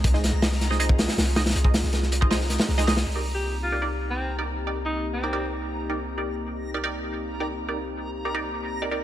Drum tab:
HH |x---x---o---x---x---o-o-o---o-oo|x---o---x---x---o---x-o---x-o-o-|--------------------------------|--------------------------------|
SD |--o-o---o-o-o-o-----o-o-o---o-oo|----o-o-o-o-----o-o-o-o-o-o-o-o-|--------------------------------|--------------------------------|
BD |o-----------------o-------------|--o-----------o-----------------|--------------------------------|--------------------------------|

HH |--------------------------------|--------------------------------|
SD |--------------------------------|--------------------------------|
BD |--------------------------------|--------------------------------|